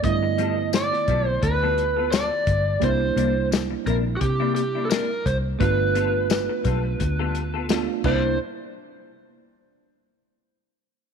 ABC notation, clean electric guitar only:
X:1
M:4/4
L:1/16
Q:"Swing 16ths" 1/4=86
K:Gdor
V:1 name="Clean electric guitar"
z2 [G,=B,FA] z3 [G,B,FA] z2 [G,B,FA] z [B,FA] [G,B,FA] z3 | [C,B,DE] z [C,B,DE] z3 [C,B,DE] z2 [C,B,DE] z [B,DE] [C,B,DE] z3 | [G,=B,FA] z [G,B,FA] z3 [G,B,FA] z2 [G,B,FA] z [B,FA] [G,B,FA] z [C,_B,DE]2 | z16 |]